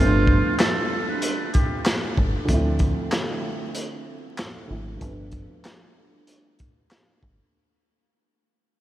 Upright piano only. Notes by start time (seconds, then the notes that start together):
Already playing: G2 F3 A3 B3
0.06 D4
2.45 D2 F3
2.49 A3 C4
2.53 E4
4.67 D2 F3 A3 C4
4.71 E4
4.97 G2 F3
5.01 A3 B3
5.05 C4
5.12 D4